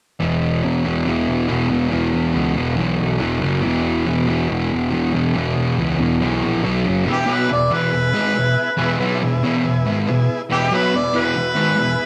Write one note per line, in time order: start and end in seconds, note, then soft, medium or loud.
0.20 0.61 E1 medium
0.20 0.63 E2 medium
0.20 0.63 B2 medium
0.20 0.64 E3 loud
0.63 0.84 E1 medium
0.63 0.83 E2 medium
0.63 0.84 B2 medium
0.63 0.84 E3 medium
0.84 1.05 E1 medium
0.84 1.05 E2 medium
0.84 1.06 B2 medium
0.84 1.07 E3 medium
1.06 1.27 E1 medium
1.06 1.46 E2 medium
1.06 1.47 B2 loud
1.06 1.48 E3 loud
1.29 1.48 E1 medium
1.47 1.70 E1 medium
1.47 1.68 E2 medium
1.47 1.69 B2 medium
1.47 1.70 E3 medium
1.70 1.91 E1 medium
1.70 1.88 E2 medium
1.70 1.89 B2 medium
1.70 1.90 E3 medium
1.89 2.12 E1 medium
1.89 2.32 E2 loud
1.89 2.33 B2 medium
1.89 2.33 E3 medium
2.14 2.33 E1 medium
2.33 2.55 C#2 medium
2.33 2.54 E2 medium
2.33 2.55 B2 medium
2.33 2.55 E3 medium
2.55 2.76 E1 medium
2.55 2.74 E2 medium
2.55 2.76 B2 medium
2.55 2.76 E3 medium
2.75 2.98 B1 medium
2.75 3.18 E2 loud
2.75 3.18 B2 loud
2.75 3.19 E3 loud
3.01 3.20 B1 medium
3.19 3.41 E1 medium
3.19 3.39 E2 medium
3.19 3.40 B2 medium
3.19 3.41 E3 medium
3.40 3.60 F#2 medium
3.40 3.61 C#3 medium
3.40 3.62 F#3 medium
3.44 3.63 F#1 medium
3.61 4.04 E2 medium
3.61 4.05 B2 medium
3.61 4.06 E3 loud
3.65 4.04 E1 medium
4.05 4.27 E1 medium
4.05 4.25 E2 medium
4.05 4.26 B2 medium
4.05 4.27 E3 medium
4.27 4.48 E1 medium
4.27 4.47 E2 medium
4.27 4.48 B2 medium
4.27 4.48 E3 medium
4.48 4.70 E1 medium
4.48 4.90 E2 medium
4.48 4.90 B2 loud
4.48 4.91 E3 loud
4.73 4.92 E1 medium
4.91 5.13 E1 medium
4.91 5.12 E2 medium
4.91 5.13 B2 medium
4.91 5.14 E3 medium
5.13 5.34 E1 medium
5.13 5.33 E2 medium
5.13 5.35 B2 medium
5.13 5.35 E3 medium
5.35 5.55 E1 medium
5.35 5.76 E2 medium
5.35 5.77 B2 loud
5.35 5.77 E3 medium
5.58 5.77 E1 medium
5.77 5.98 C#2 medium
5.77 5.98 E2 medium
5.77 5.98 B2 medium
5.77 6.00 E3 loud
5.99 6.20 E1 medium
5.99 6.20 E2 medium
5.99 6.20 B2 medium
5.99 6.21 E3 medium
6.21 6.42 B1 medium
6.21 6.63 E2 medium
6.21 6.62 B2 loud
6.21 6.64 E3 loud
6.44 6.63 A#1 medium
6.63 6.85 B1 medium
6.63 6.84 B2 medium
6.63 6.85 F#3 medium
6.63 6.85 B3 medium
6.84 7.07 F#1 medium
6.84 7.05 F#2 medium
6.84 7.06 C#3 medium
6.84 7.06 F#3 medium
7.06 7.28 E2 medium
7.06 7.25 B2 medium
7.06 7.28 E3 loud
7.06 7.24 B3 medium
7.06 7.25 E4 medium
7.06 7.25 G#4 loud
7.12 7.33 G4 medium
7.26 7.49 B2 medium
7.26 7.50 F#3 medium
7.26 7.45 B3 medium
7.26 7.49 B3 loud
7.26 7.46 E4 medium
7.26 7.46 F#4 medium
7.32 7.52 B4 medium
7.48 7.68 E2 medium
7.48 7.68 B2 medium
7.48 7.84 B3 medium
7.48 7.84 E4 medium
7.48 7.84 G#4 medium
7.52 7.72 D5 medium
7.71 7.91 E2 loud
7.71 7.92 B2 loud
7.71 7.93 E3 loud
7.71 8.98 B4 loud
7.90 8.10 E2 medium
7.90 8.10 B2 medium
7.90 8.26 B3 medium
7.90 8.26 E4 medium
7.90 8.26 G#4 medium
8.13 8.34 G#2 medium
8.13 8.34 D#3 medium
8.13 8.36 G#3 loud
8.34 8.53 E2 medium
8.34 8.53 B2 medium
8.34 8.70 B3 medium
8.34 8.70 E4 medium
8.34 8.71 G#4 loud
8.77 8.99 E2 medium
8.77 8.98 B2 medium
8.77 9.00 E3 loud
8.77 8.95 B3 loud
8.77 8.96 E4 loud
8.77 8.96 G#4 loud
8.99 9.21 B2 medium
8.99 9.21 F#3 medium
8.99 9.21 B3 medium
8.99 9.18 B3 medium
8.99 9.18 E4 medium
8.99 9.18 G#4 medium
9.21 9.39 E2 medium
9.21 9.39 B2 medium
9.21 9.57 B3 medium
9.21 9.56 E4 medium
9.21 9.57 G#4 medium
9.43 9.63 E2 medium
9.43 9.64 B2 medium
9.43 9.65 E3 loud
9.64 9.82 E2 medium
9.64 9.82 B2 medium
9.64 9.99 B3 medium
9.64 9.99 E4 medium
9.64 9.99 G#4 medium
9.86 10.07 G#2 medium
9.86 10.07 D#3 loud
9.86 10.08 G#3 loud
10.07 10.25 E2 medium
10.07 10.25 B2 medium
10.07 10.42 B3 medium
10.07 10.42 E4 medium
10.07 10.42 G#4 loud
10.50 10.71 E2 medium
10.50 10.70 B2 medium
10.50 10.71 E3 loud
10.50 10.68 B3 medium
10.50 10.68 E4 medium
10.50 10.76 G4 loud
10.50 10.68 G#4 loud
10.71 10.93 B2 medium
10.71 10.93 F#3 loud
10.71 10.93 B3 loud
10.71 10.90 B3 medium
10.71 10.90 E4 medium
10.71 10.90 B4 medium
10.71 10.98 B4 medium
10.93 11.11 E2 medium
10.93 11.11 B2 medium
10.93 11.28 B3 medium
10.93 11.29 E4 medium
10.93 11.28 G#4 medium
10.93 11.19 D5 medium
11.13 11.35 E2 loud
11.13 11.35 B2 loud
11.13 11.36 E3 loud
11.17 12.06 B4 loud
11.36 11.53 E2 medium
11.36 11.53 B2 medium
11.36 11.70 B3 medium
11.36 11.70 E4 medium
11.36 11.70 F#4 medium
11.56 11.76 G#2 medium
11.56 11.76 D#3 medium
11.56 11.78 G#3 loud
11.76 11.95 E2 medium
11.76 11.95 B2 medium
11.76 12.06 B3 medium
11.76 12.06 E4 medium
11.76 12.06 G#4 loud